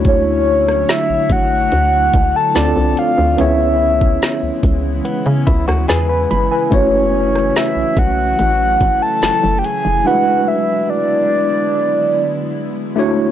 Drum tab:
HH |x---x-x-x-x-x-x-|x---x-x-x-x-x-x-|x---x-x-x-x-x-x-|----------------|
SD |---ro-------o---|----o------ro---|---ro-------o---|----------------|
BD |o-----o---o-----|---o--o---o-----|o-----o---o-----|----------------|